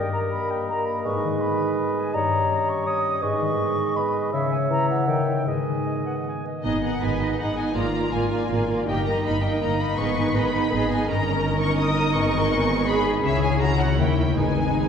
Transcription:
Already playing: harp G2 A#3 A#4, bassoon G3, clarinet A#4, oboe D#5, flute G5
0.12 harp G3, flute A#5
0.31 harp A#3, flute B5
0.50 harp A#4, flute G5
0.68 harp A#3, flute A#5
0.85 flute B5
1.04 harp G#2, bassoon G#3, clarinet B4, flute C#6
1.24 harp D#3
1.41 harp B3, flute B5
1.60 harp D#5
1.80 harp B3
1.96 harp D#5, flute G#5
2.13 harp G2, bassoon G3, clarinet C#5, oboe D#5, flute A#5
2.31 harp G3
2.50 harp C#4
2.68 harp D#5, flute C#6
2.86 harp C#4, clarinet C#5, oboe D#5, flute D#6
3.22 harp G#2, bassoon G#3, clarinet B4, oboe D#5, flute C#6
3.41 harp D#3
3.59 harp B3
3.78 harp D#5
3.96 harp B3, clarinet B4, oboe D#5, flute B5
4.15 harp D#5
4.32 harp C#3, bassoon C#3, clarinet C#5, flute E5, oboe E5
4.51 harp G#3, flute G#5
4.69 bassoon E3, harp C#4, flute A#5
4.88 harp C#5, flute F#5
5.07 harp D#3, bassoon D#3, clarinet C#5, oboe E5, flute G5
5.28 harp E4 C#5
5.46 harp G#2, bassoon G#3, clarinet B4, oboe D#5, flute G#5
5.66 harp D#3
5.86 harp B3, clarinet D#5
6.05 harp B4, clarinet F#5
6.26 harp B3, clarinet G#5
6.44 harp B4, clarinet D#5
6.62 double bass section G#1, harp G#2, viola section B3 D#4, violin section G#4 D#5
6.83 harp D#3, viola section B3 D#4, violin section G#4 D#5 F#5
7.00 double bass section G#1, viola section B3 D#4, harp B3, violin section G#4 D#5 G#5, cello section B4
7.19 viola section B3 D#4, violin section G#4 D#5, harp B4
7.38 double bass section G#1, viola section B3 D#4, harp B3, cello section D#4, violin section G#4 D#5 F#5
7.56 viola section B3 D#4, violin section G#4 D#5 G#5, harp B4
7.74 double bass section G#1, harp G#2, viola section A#3 F4, cello section F4, violin section A#4 D5 A#5
7.93 harp G#3, viola section A#3 F4, violin section A#4 D5
8.12 double bass section G#1, viola section A#3 F4, harp A#3, violin section A#4 D5 G#5
8.31 viola section A#3 F4, violin section A#4 D5, harp D5
8.49 double bass section G#1, viola section A#3 F4, harp A#3, violin section A#4 D5
8.68 viola section A#3 F4, violin section A#4 D5, harp D5
8.87 double bass section G1, harp G2, viola section A#3 D#4, cello section G4, violin section A#4 D#5 G5
9.05 harp G3, viola section A#3 D#4, violin section A#4 D#5 A#5
9.24 double bass section G1, harp A#3, viola section A#3 D#4, cello section D#4, violin section A#4 D#5 B5
9.42 viola section A#3 D#4, violin section A#4 D#5 G5, harp D#5
9.61 double bass section G1, harp A#3, viola section A#3 D#4, violin section A#4 D#5 A#5
9.79 viola section A#3 D#4, violin section A#4 D#5 B5
9.96 double bass section G#1, harp G#2, viola section B3 D#4, cello section B4, violin section D#5 C#6
10.00 violin section G#4
10.16 harp D#3, viola section B3 D#4, violin section G#4 D#5
10.34 double bass section G#1, viola section B3 D#4, harp B3, violin section G#4 D#5 B5
10.53 viola section B3 D#4, violin section G#4 D#5, harp D#5
10.70 double bass section G#1, viola section B3 D#4, harp B3, cello section G#4, violin section G#4 D#5
10.90 viola section B3 D#4, violin section G#4 D#5 G#5, harp D#5
11.07 double bass section G1, harp G2, viola section C#4 D#4, cello section A#4, violin section A#4 D#5 A#5
11.26 harp G3
11.44 harp C#4
11.59 harp D#5, violin section C#6
11.77 harp C#4, violin section D#6
12.13 double bass section G#1, harp G#2, viola section B3, violin section G#4 C#6
12.33 harp D#3
12.50 harp B3
12.69 harp D#5
12.87 harp B3, cello section G#4, violin section B5
13.04 harp D#5
13.23 double bass section C#2, harp C#3, viola section C#4 E4, cello section G#4, violin section C#5 E5
13.42 harp G#3, violin section G#5
13.61 harp C#4, cello section F#4, violin section A#5
13.80 harp C#5, violin section F#5
13.99 double bass section D#2, harp D#3, viola section A#3, cello section E4, violin section E4 G5
14.18 harp E4 A#4
14.37 double bass section G#1, harp G#2, viola section G#3 D#4, cello section D#4, violin section G#4 B4 G#5
14.57 harp D#3
14.78 harp B3

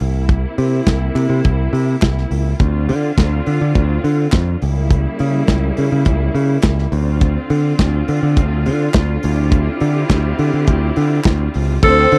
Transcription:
0.00 picked electric bass C2, string section C3 A#3 E4, open hi-hat
0.29 kick, closed hi-hat
0.58 picked electric bass C3, open hi-hat
0.86 picked electric bass C2, kick, snare, clap, closed hi-hat
1.15 picked electric bass C3, clap, open hi-hat
1.30 picked electric bass C3
1.44 picked electric bass C2, kick, closed hi-hat
1.73 picked electric bass C3, open hi-hat
2.01 picked electric bass C2, kick, snare, clap, closed hi-hat
2.18 snare
2.31 picked electric bass C#2, open hi-hat
2.59 picked electric bass D2, string section D3 C4 F4, kick, closed hi-hat
2.89 picked electric bass D3, open hi-hat
3.18 picked electric bass D2, kick, snare, clap, closed hi-hat
3.46 picked electric bass D3, open hi-hat
3.61 picked electric bass D3
3.75 picked electric bass D2, kick, closed hi-hat
4.04 picked electric bass D3, open hi-hat
4.32 picked electric bass F2, kick, snare, clap, closed hi-hat
4.62 picked electric bass C#2, string section C#3 G3 A#3 E4, open hi-hat
4.91 kick, closed hi-hat
5.19 picked electric bass C#3, open hi-hat
5.47 picked electric bass C#2, kick, snare, clap, closed hi-hat
5.77 picked electric bass C#3, open hi-hat
5.92 picked electric bass C#3
6.05 picked electric bass C#2, kick, closed hi-hat
6.35 picked electric bass C#3, open hi-hat
6.62 picked electric bass C#2, kick, snare, clap, closed hi-hat
6.78 snare
6.92 picked electric bass D2, string section D3 C4 F4, open hi-hat
7.21 kick, closed hi-hat
7.50 picked electric bass D3, open hi-hat
7.79 picked electric bass D2, kick, snare, clap, closed hi-hat
8.08 picked electric bass D3, open hi-hat
8.23 picked electric bass D3
8.36 picked electric bass D2, kick, closed hi-hat
8.66 picked electric bass D3, open hi-hat
8.93 picked electric bass D2, kick, snare, clap, closed hi-hat
9.23 picked electric bass D2, string section C4 E4 G4, open hi-hat
9.51 kick, closed hi-hat
9.80 picked electric bass D3, open hi-hat
10.09 picked electric bass D2, kick, snare, clap, closed hi-hat
10.39 picked electric bass D3, open hi-hat
10.54 picked electric bass D3
10.67 picked electric bass D2, kick, closed hi-hat
10.96 picked electric bass D3, open hi-hat
11.24 picked electric bass D2, kick, snare, clap, closed hi-hat
11.54 picked electric bass C#2, open hi-hat
11.83 picked electric bass D2, string section D3 C4 F4 C5, tenor saxophone A4, kick, crash
12.12 picked electric bass D3, open hi-hat

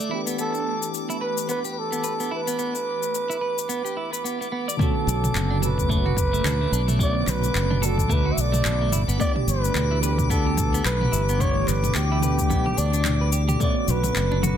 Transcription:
Already playing: synth keys F#4, muted trumpet D5, synth texture D6
0.00 clean electric guitar A3, cabasa
0.09 synth keys E3 A3 B3, clean electric guitar E4
0.13 synth keys D4 G4
0.27 clean electric guitar B3, cabasa
0.39 clean electric guitar B3, muted trumpet A4, cabasa
0.55 cabasa
0.83 cabasa
0.94 cabasa
1.10 clean electric guitar E4, cabasa
1.21 clean electric guitar B4, muted trumpet B4
1.38 cabasa
1.49 clean electric guitar B3, muted trumpet B4, cabasa
1.65 clean electric guitar G4, cabasa
1.73 muted trumpet B4
1.79 muted trumpet A4
1.92 clean electric guitar B3, cabasa
2.04 clean electric guitar B4, cabasa
2.20 clean electric guitar B3, cabasa
2.31 clean electric guitar E4, muted trumpet B4
2.47 clean electric guitar B3, cabasa
2.59 clean electric guitar B3, cabasa
2.75 cabasa
3.03 cabasa
3.15 cabasa
3.30 clean electric guitar E4, cabasa
3.41 clean electric guitar B4
3.58 cabasa
3.69 clean electric guitar B3, cabasa
3.85 clean electric guitar G4, cabasa
3.97 clean electric guitar E4
4.13 clean electric guitar B4, cabasa
4.24 clean electric guitar B3, cabasa
4.41 clean electric guitar B3, cabasa
4.52 clean electric guitar B3
4.68 clean electric guitar D5, cabasa
4.77 synth keys D3 A3 B3, clean electric guitar A3, synth texture D6, kick, mid tom
4.81 synth keys C#4 F#4, muted trumpet A4, cabasa
5.07 fingered electric bass B1, cabasa
5.24 mid tom, cabasa
5.34 fingered electric bass F#1, clap, cabasa
5.50 clean electric guitar D4
5.60 synth keys D3 A3 B3, clean electric guitar A4, mid tom, cabasa
5.64 synth keys C#4 F#4, muted trumpet B4
5.78 kick, cabasa
5.89 clean electric guitar A3, muted trumpet B4, kick, cabasa
6.06 clean electric guitar F#4, mid tom
6.17 kick, cabasa
6.33 clean electric guitar A3, cabasa
6.44 fingered electric bass D2, clean electric guitar A4, clap, mid tom, cabasa
6.61 clean electric guitar A3
6.72 fingered electric bass B1, clean electric guitar D4, cabasa
6.88 clean electric guitar A3, mid tom, cabasa
6.97 synth keys D3 A3 B3, clean electric guitar A3, kick, cabasa
7.02 synth keys C#4 F#4, muted trumpet D5
7.27 fingered electric bass B1, muted trumpet B4, clap, mid tom, cabasa
7.44 cabasa
7.55 fingered electric bass F#1, clap, cabasa
7.71 clean electric guitar D4, mid tom
7.79 synth keys D3 A3 B3, clean electric guitar A4
7.83 synth keys F#4 D5, muted trumpet A4, cabasa
7.98 kick, cabasa
8.09 fingered electric bass D2, clean electric guitar A3, muted trumpet B4, kick, mid tom, cabasa
8.26 clean electric guitar F#4
8.33 muted trumpet E5
8.37 fingered electric bass B1, muted trumpet D5, cabasa
8.52 clean electric guitar A3, mid tom, cabasa
8.65 fingered electric bass B1, clean electric guitar A4, clap, cabasa
8.81 clean electric guitar A3
8.92 fingered electric bass G1, clean electric guitar E4, mid tom, cabasa
9.08 fingered electric bass G1, clean electric guitar B3, cabasa
9.17 synth keys E3 A3 B3, clean electric guitar B3, muted trumpet D5, kick, cabasa
9.22 synth keys D4 G4
9.36 mid tom
9.48 fingered electric bass G1, muted trumpet B4, cabasa
9.65 cabasa
9.75 fingered electric bass D2, clap, mid tom, cabasa
9.91 clean electric guitar E4
10.00 synth keys E3 A3 B3, muted trumpet B4, clean electric guitar B4, cabasa
10.05 synth keys D4 G4
10.18 kick, mid tom, cabasa
10.30 clean electric guitar B3, muted trumpet A4, kick, cabasa
10.47 clean electric guitar G4
10.57 kick, mid tom, cabasa
10.74 clean electric guitar B3, cabasa
10.85 fingered electric bass B1, muted trumpet B4, clean electric guitar B4, clap, cabasa
11.01 clean electric guitar B3, mid tom
11.12 fingered electric bass G1, clean electric guitar E4, cabasa
11.29 clean electric guitar B3, cabasa
11.38 synth keys E3 A3 B3, clean electric guitar B3, muted trumpet C#5, kick, mid tom, cabasa
11.43 synth keys D4 G4
11.68 fingered electric bass G1, muted trumpet B4, clap, cabasa
11.84 mid tom, cabasa
11.95 fingered electric bass D2, muted trumpet G4, clap, cabasa
12.12 clean electric guitar E4
12.20 synth keys E3 A3 B3, clean electric guitar B4, mid tom, cabasa
12.25 synth keys D4 G4
12.39 kick, cabasa
12.50 fingered electric bass B1, clean electric guitar B3, kick, cabasa
12.66 clean electric guitar G4, mid tom
12.77 fingered electric bass D2, clean electric guitar D4, muted trumpet D5, cabasa
12.94 clean electric guitar D4, cabasa
13.05 clean electric guitar D4, clap, mid tom, cabasa
13.21 clean electric guitar B4
13.33 clean electric guitar G4, cabasa
13.48 clean electric guitar G4, mid tom, cabasa
13.58 synth keys D3 A3 B3, clean electric guitar A3, kick, mid tom, cabasa
13.62 synth keys C#4 F#4, muted trumpet D5
13.88 fingered electric bass B1, muted trumpet B4, low conga, cabasa
14.04 mid tom, cabasa
14.16 fingered electric bass F#1, clap, cabasa
14.31 clean electric guitar D4, muted conga, high conga
14.40 synth keys D3 A3 B3, clean electric guitar F#4, mid tom
14.44 synth keys C#4 F#4, muted trumpet B4, high conga, cabasa

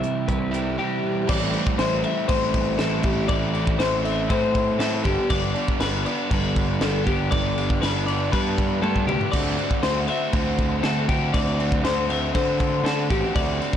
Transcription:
Already playing: overdriven electric guitar C3 E3 G3 C4 E4, clean electric guitar C3 E4 G4 E5
0.03 clean electric guitar G3, closed hi-hat
0.28 picked electric bass C2, clean electric guitar E4 B4, kick, closed hi-hat
0.51 overdriven electric guitar C3 E3 G3 C4 E4, clean electric guitar G4 A4, closed hi-hat
0.77 overdriven electric guitar C3 E3 G3 C4 E4, clean electric guitar C3 G4
1.04 clean electric guitar B2
1.27 picked electric bass A1, overdriven electric guitar A2 E3 A3 C4 E4, clean electric guitar D5, kick, crash
1.53 overdriven electric guitar A3 C4 E4, crash
1.67 kick
1.78 picked electric bass A1, overdriven electric guitar E3 A3 C4 E4, clean electric guitar C5, snare, crash
2.03 overdriven electric guitar A3 C4 E4, clean electric guitar E5, crash
2.28 picked electric bass A1, overdriven electric guitar A2 E3 A3 C4 E4, clean electric guitar C5, kick, crash
2.54 kick, crash
2.78 picked electric bass A1, overdriven electric guitar E3 A3 C4 E4, clean electric guitar A4, snare, crash
3.02 overdriven electric guitar A3 C4 E4, clean electric guitar G4, kick, crash
3.28 picked electric bass A1, overdriven electric guitar A2 E3 A3 C4 E4, clean electric guitar D5, kick, crash
3.53 overdriven electric guitar A3 C4 E4, crash
3.67 kick
3.77 picked electric bass A1, overdriven electric guitar E3 A3 C4 E4, clean electric guitar C5, snare, crash
4.03 overdriven electric guitar A3 C4 E4, clean electric guitar E5, crash
4.28 overdriven electric guitar A2 E3 A3 C4 E4, picked electric bass A2, clean electric guitar C5, kick, crash
4.55 kick, crash
4.79 picked electric bass A2, overdriven electric guitar E3 A3 C4 E4, clean electric guitar A4, snare, crash
5.03 picked electric bass G1, overdriven electric guitar G2 D3 G3 B3 D4, clean electric guitar G4, kick, crash
5.30 picked electric bass G1, overdriven electric guitar G2 D3 G3 B3 D4, clean electric guitar D5, kick, crash
5.54 overdriven electric guitar G3 B3 D4, crash
5.68 kick
5.79 picked electric bass G1, overdriven electric guitar D3 G3 B3 D4, clean electric guitar B4, snare, crash
6.05 overdriven electric guitar G3 B3 D4, clean electric guitar D5, crash
6.30 picked electric bass G1, overdriven electric guitar G2 D3 G3 B3 D4, clean electric guitar B4, kick, crash
6.56 kick, crash
6.80 picked electric bass G1, overdriven electric guitar D3 G3 B3 D4, clean electric guitar A4, snare, crash
7.04 overdriven electric guitar G3 B3 D4, clean electric guitar G4, kick, crash
7.31 picked electric bass G1, overdriven electric guitar G2 D3 G3 B3 D4, clean electric guitar D5, kick, crash
7.56 overdriven electric guitar G3 B3 D4, crash
7.70 kick
7.81 picked electric bass G1, overdriven electric guitar D3 G3 B3 D4, clean electric guitar B4, snare, crash
8.06 overdriven electric guitar G3 B3 D4, clean electric guitar D5, crash
8.30 overdriven electric guitar G2 D3 G3 B3 D4, picked electric bass G2, clean electric guitar B4, kick, crash
8.58 kick, crash
8.81 picked electric bass G2, overdriven electric guitar D3 G3 B3 D4, clean electric guitar A4, high tom
8.96 kick
9.07 picked electric bass D2, overdriven electric guitar G3 B3 D4, clean electric guitar G4, mid tom
9.21 floor tom
9.31 picked electric bass D2, overdriven electric guitar D3 A3 C4 F#4, clean electric guitar D5, kick, crash
9.57 overdriven electric guitar A3 C4 F#4, crash
9.71 kick
9.82 picked electric bass D2, overdriven electric guitar D3 A3 C4 F#4, clean electric guitar C5, snare, crash
10.08 overdriven electric guitar A3 C4 F#4, clean electric guitar E5, crash
10.32 picked electric bass D2, overdriven electric guitar D3 A3 C4 F#4, clean electric guitar C5, kick, crash
10.58 kick, crash
10.83 picked electric bass D2, overdriven electric guitar D3 A3 C4 F#4, clean electric guitar A4, snare, crash
11.08 overdriven electric guitar A3 C4 F#4, clean electric guitar G4, kick, crash
11.33 picked electric bass D2, overdriven electric guitar D3 A3 C4 F#4, clean electric guitar D5, kick, crash
11.59 overdriven electric guitar A3 C4 F#4, crash
11.72 kick
11.83 picked electric bass D2, overdriven electric guitar D3 A3 C4 F#4, clean electric guitar C5, snare, crash
12.08 overdriven electric guitar A3 C4 F#4, clean electric guitar E5, crash
12.34 overdriven electric guitar D3 A3 C4 F#4, picked electric bass D3, clean electric guitar C5, kick, crash
12.60 kick, crash
12.84 overdriven electric guitar D3 A3 C4 F#4, picked electric bass D3, clean electric guitar A4, snare, crash
13.09 picked electric bass A1, overdriven electric guitar A3 C4 F#4, clean electric guitar G4, kick, crash
13.34 picked electric bass D2, overdriven electric guitar D3 A3 C4 F#4, clean electric guitar D5, kick, crash
13.59 overdriven electric guitar A3 C4 F#4, crash
13.73 kick

